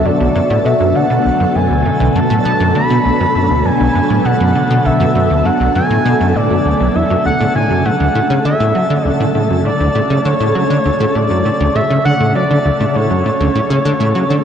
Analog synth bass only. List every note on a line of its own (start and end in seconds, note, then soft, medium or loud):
0.05 0.10 F#2 medium
0.20 0.29 B1 loud
0.36 0.41 F#2 loud
0.50 0.59 A2 loud
0.65 0.74 B2 loud
0.80 0.93 F#2 medium
0.95 1.04 D3 medium
1.10 1.19 B2 loud
1.25 1.30 B1 medium
1.40 1.45 F#2 loud
1.55 1.68 F#2 medium
1.70 1.83 D2 medium
1.85 1.90 F#2 medium
2.00 2.09 B1 loud
2.15 2.20 F#2 loud
2.30 2.39 A2 loud
2.45 2.54 B2 loud
2.60 2.73 F#2 loud
2.75 2.84 D3 medium
2.90 2.99 B2 loud
3.05 3.10 B1 medium
3.20 3.25 F#2 loud
3.35 3.48 F#2 medium
3.50 3.63 D2 medium
3.65 3.70 F#2 medium
3.80 3.89 B1 loud
3.95 4.00 F#2 loud
4.10 4.19 A2 loud
4.25 4.34 B2 loud
4.40 4.53 F#2 loud
4.55 4.64 D3 medium
4.70 4.79 B2 loud
4.85 4.90 B1 medium
5.00 5.05 F#2 loud
5.15 5.28 F#2 medium
5.30 5.43 D2 medium
5.45 5.50 F#2 medium
5.60 5.69 B1 medium
5.75 5.80 F#2 loud
5.90 5.99 A2 loud
6.05 6.14 B2 loud
6.21 6.33 F#2 loud
6.36 6.48 A2 medium
6.51 6.59 F#2 medium
6.65 6.74 D2 medium
6.80 6.89 B1 loud
6.96 7.04 E2 medium
7.10 7.15 F#2 loud
7.25 7.30 D2 medium
7.41 7.45 A2 loud
7.55 7.68 A2 medium
7.70 7.83 F#2 medium
7.85 7.90 A2 medium
8.00 8.09 D2 medium
8.15 8.20 A2 loud
8.30 8.39 C#3 loud
8.45 8.54 D3 loud
8.60 8.73 A2 loud
8.75 8.84 F#3 medium
8.90 8.99 D3 loud
9.05 9.10 D2 medium
9.20 9.25 A2 loud
9.35 9.48 A2 medium
9.50 9.63 F#2 medium
9.65 9.70 A2 medium
9.80 9.89 D2 loud
9.95 10.00 A2 loud
10.10 10.19 C#3 loud
10.25 10.34 D3 loud
10.40 10.53 A2 loud
10.55 10.64 F#3 medium
10.70 10.79 D3 loud
10.85 10.90 D2 medium
11.00 11.05 A2 loud
11.15 11.28 A2 medium
11.30 11.43 F#2 medium
11.45 11.50 A2 medium
11.61 11.69 D2 loud
11.76 11.80 A2 loud
11.90 11.99 C#3 loud
12.05 12.14 D3 loud
12.20 12.33 A2 loud
12.36 12.44 F#3 medium
12.51 12.59 D3 loud
12.66 12.71 D2 medium
12.81 12.85 A2 loud
12.96 13.08 A2 medium
13.10 13.23 F#2 medium
13.26 13.31 A2 medium
13.40 13.49 D2 loud
13.55 13.60 A2 loud
13.70 13.79 C#3 loud
13.85 13.94 D3 loud
14.00 14.13 A2 loud
14.15 14.24 F#3 medium
14.30 14.39 D3 loud